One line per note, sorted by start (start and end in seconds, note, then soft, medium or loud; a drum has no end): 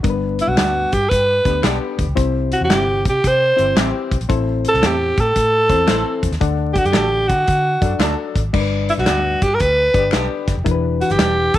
0.03 0.40 G1 medium
0.03 0.88 G2 medium
0.03 0.95 G3 medium
0.03 0.95 B3 medium
0.03 0.95 D4 medium
0.03 0.13 A#4 medium
0.03 kick loud
0.03 closed hi-hat medium
0.10 0.98 B4 medium
0.39 0.50 E4 medium
0.39 closed hi-hat medium
0.47 0.55 B1 medium
0.47 0.95 F#4 medium
0.57 0.85 D2 medium
0.57 0.69 G3 medium
0.57 0.70 B3 medium
0.57 0.70 D4 medium
0.57 0.70 G4 medium
0.57 finger snap medium
0.57 snare loud
0.57 closed hi-hat medium
0.92 1.07 G2 medium
0.92 1.11 G4 medium
0.92 kick medium
0.92 closed hi-hat medium
1.09 1.39 G2 medium
1.09 1.63 B4 medium
1.09 kick medium
1.09 closed hi-hat medium
1.45 1.60 D2 medium
1.45 1.54 D3 medium
1.45 2.05 B3 medium
1.45 1.54 B3 medium
1.45 2.05 D4 medium
1.45 2.05 G4 medium
1.45 1.54 G4 medium
1.45 2.05 B4 medium
1.45 kick medium
1.45 closed hi-hat medium
1.63 1.78 B1 medium
1.63 2.06 D3 medium
1.63 1.75 G3 medium
1.63 1.76 B3 medium
1.63 2.06 B3 medium
1.63 1.76 D4 medium
1.63 1.76 G4 loud
1.63 2.06 G4 loud
1.63 finger snap loud
1.63 snare loud
1.63 closed hi-hat medium
1.98 2.06 D2 medium
1.98 kick medium
1.98 closed hi-hat medium
2.08 2.15 C#2 medium
2.15 2.52 C2 loud
2.15 3.00 C3 medium
2.15 3.07 C4 medium
2.15 3.07 E4 medium
2.15 3.08 G4 medium
2.15 3.08 C5 medium
2.15 kick loud
2.15 closed hi-hat medium
2.52 2.61 F#4 medium
2.52 closed hi-hat medium
2.61 2.68 E2 medium
2.61 3.04 G4 medium
2.70 3.07 G1 medium
2.70 2.82 G3 medium
2.70 2.82 C4 medium
2.70 2.83 E4 medium
2.70 2.83 G4 medium
2.70 finger snap medium
2.70 snare loud
2.70 closed hi-hat medium
3.05 3.20 C3 medium
3.05 kick medium
3.05 closed hi-hat medium
3.10 3.29 G4 medium
3.24 3.52 C3 medium
3.24 3.78 C5 loud
3.24 kick medium
3.24 closed hi-hat medium
3.56 3.73 G1 medium
3.56 3.66 E3 medium
3.56 4.17 C4 medium
3.56 3.65 C4 medium
3.56 4.17 E4 medium
3.56 4.17 G4 medium
3.56 3.65 G4 medium
3.56 4.17 C5 medium
3.56 closed hi-hat medium
3.76 3.91 A1 medium
3.76 4.18 E3 medium
3.76 3.88 G3 medium
3.76 3.88 C4 medium
3.76 4.18 C4 medium
3.76 3.89 E4 medium
3.76 4.18 G4 loud
3.76 3.89 G4 medium
3.76 finger snap loud
3.76 snare loud
3.76 closed hi-hat medium
4.11 4.19 B1 medium
4.11 kick medium
4.11 closed hi-hat medium
4.21 4.28 A#1 medium
4.21 closed hi-hat medium
4.29 4.65 A1 medium
4.29 5.13 A2 medium
4.29 5.20 C4 medium
4.29 5.20 E4 medium
4.29 5.20 A4 medium
4.29 5.20 C5 medium
4.29 kick loud
4.29 closed hi-hat medium
4.65 4.87 A4 loud
4.65 closed hi-hat medium
4.74 4.81 C2 medium
4.74 snare soft
4.82 5.11 E2 medium
4.82 4.94 A3 medium
4.82 4.95 C4 medium
4.82 4.95 E4 medium
4.82 5.22 G4 medium
4.82 4.95 A4 medium
4.82 finger snap medium
4.82 snare loud
4.82 closed hi-hat medium
5.18 5.32 A2 medium
5.18 6.25 A4 loud
5.18 kick medium
5.18 closed hi-hat medium
5.36 5.71 A2 medium
5.36 kick medium
5.36 closed hi-hat medium
5.70 5.85 E2 medium
5.70 5.78 E3 medium
5.70 6.30 C4 medium
5.70 5.78 C4 medium
5.70 6.30 E4 medium
5.70 6.30 A4 medium
5.70 5.78 A4 medium
5.70 6.30 C5 medium
5.70 kick medium
5.70 closed hi-hat medium
5.87 6.03 A1 medium
5.87 6.31 E3 medium
5.87 6.00 A3 medium
5.87 6.00 C4 medium
5.87 6.31 C4 medium
5.87 6.00 E4 medium
5.87 6.01 A4 loud
5.87 6.31 A4 loud
5.87 finger snap loud
5.87 snare loud
5.87 closed hi-hat medium
6.23 6.30 E2 medium
6.23 kick medium
6.23 closed hi-hat medium
6.31 6.39 D#2 medium
6.31 snare soft
6.31 closed hi-hat soft
6.41 6.77 D2 medium
6.41 7.25 D3 medium
6.41 7.32 D4 medium
6.41 7.32 A4 medium
6.41 7.32 D5 medium
6.41 7.32 F#5 medium
6.41 kick loud
6.41 closed hi-hat medium
6.73 6.80 G4 medium
6.73 kick medium
6.73 closed hi-hat medium
6.78 6.87 F#4 loud
6.85 6.93 F#2 medium
6.85 7.29 G4 loud
6.85 closed hi-hat soft
6.92 7.31 A1 medium
6.92 7.06 A3 medium
6.92 7.06 D4 medium
6.92 7.06 F#4 medium
6.92 7.06 A4 medium
6.92 finger snap medium
6.92 snare loud
6.92 closed hi-hat medium
7.28 7.44 D3 medium
7.28 8.00 F#4 medium
7.28 kick medium
7.28 closed hi-hat medium
7.48 7.76 D3 loud
7.48 kick medium
7.48 closed hi-hat medium
7.81 7.97 F#2 medium
7.81 7.90 F#3 medium
7.81 8.42 D4 medium
7.81 7.90 D4 medium
7.81 8.42 F#4 medium
7.81 8.42 A4 medium
7.81 7.90 A4 medium
7.81 8.42 D5 medium
7.81 kick medium
7.81 closed hi-hat medium
7.99 8.14 D2 loud
7.99 8.42 F#3 medium
7.99 8.12 A3 medium
7.99 8.42 D4 medium
7.99 8.13 D4 medium
7.99 8.13 F#4 loud
7.99 8.42 A4 medium
7.99 8.13 A4 medium
7.99 finger snap medium
7.99 snare loud
7.99 closed hi-hat medium
8.36 8.50 G#1 medium
8.36 kick medium
8.36 closed hi-hat medium
8.53 8.89 G1 loud
8.53 9.38 G2 medium
8.53 9.45 G3 medium
8.53 9.45 D4 medium
8.53 8.62 A#4 medium
8.53 9.45 D5 medium
8.53 kick loud
8.53 crash medium
8.60 9.48 B4 medium
8.89 8.94 E4 medium
8.89 closed hi-hat medium
8.98 9.05 B1 medium
8.98 9.44 F#4 medium
8.98 snare soft
9.06 9.35 D2 medium
9.06 9.19 G3 medium
9.06 9.19 B3 medium
9.06 9.20 D4 medium
9.06 9.20 G4 medium
9.06 finger snap medium
9.06 snare loud
9.06 closed hi-hat medium
9.42 9.57 G2 medium
9.42 9.56 G4 medium
9.42 kick medium
9.42 closed hi-hat medium
9.55 9.62 A#4 medium
9.60 9.88 D2 medium
9.60 10.13 B4 loud
9.60 kick medium
9.60 closed hi-hat medium
9.94 10.09 G1 medium
9.94 10.03 D3 medium
9.94 10.03 B3 medium
9.94 10.54 D4 medium
9.94 10.54 G4 medium
9.94 10.03 G4 medium
9.94 10.54 B4 medium
9.94 10.54 D5 medium
9.94 kick medium
9.94 closed hi-hat medium
10.11 10.27 B1 medium
10.11 10.55 D3 medium
10.11 10.25 G3 medium
10.11 10.25 B3 medium
10.11 10.55 B3 medium
10.11 10.26 D4 medium
10.11 10.26 G4 medium
10.11 10.55 G4 loud
10.11 finger snap loud
10.11 snare loud
10.11 closed hi-hat medium
10.47 10.55 F#1 medium
10.47 kick medium
10.47 snare soft
10.47 closed hi-hat medium
10.57 10.64 F1 medium
10.64 11.01 E1 loud
10.64 11.49 E3 medium
10.64 11.57 D4 medium
10.64 11.56 E4 medium
10.64 11.56 G4 medium
10.64 10.74 A#4 medium
10.64 kick loud
10.64 closed hi-hat medium
10.71 11.59 B4 medium
11.01 11.13 F#4 medium
11.01 closed hi-hat medium
11.10 11.17 G1 medium
11.10 11.57 G4 medium
11.10 snare soft
11.10 closed hi-hat soft
11.19 11.47 E1 medium
11.19 11.31 G3 medium
11.19 11.32 B3 medium
11.19 11.32 D4 medium
11.19 11.32 G4 medium
11.19 finger snap medium
11.19 snare loud
11.19 closed hi-hat medium
11.54 11.59 E2 medium
11.54 11.59 A4 loud
11.54 kick medium
11.54 closed hi-hat medium